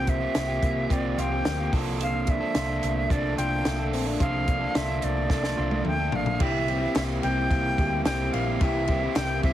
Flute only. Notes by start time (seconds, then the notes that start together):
Already playing: G5
0.09 E5
0.93 D5
1.20 G5
2.03 F5
2.30 E5
3.11 D5
3.37 G5
4.20 F5
4.76 E5
5.04 D5
5.88 G5
6.15 F5
6.42 E5
6.97 E5
7.22 G5
8.05 G5
8.33 F5
8.62 E5
9.16 G5
9.44 E5